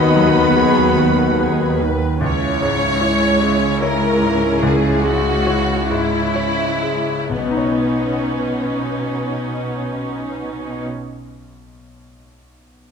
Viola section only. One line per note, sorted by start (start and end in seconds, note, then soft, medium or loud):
0.00 0.48 F#4 medium
0.00 0.46 D#5 medium
0.56 0.94 G#4 medium
0.98 1.39 F#4 soft
1.40 1.80 G#4 soft
1.80 2.21 B4 soft
2.23 7.02 C#4 medium
2.23 7.02 E4 soft
7.29 10.85 C#4 soft
7.29 10.85 D#4 soft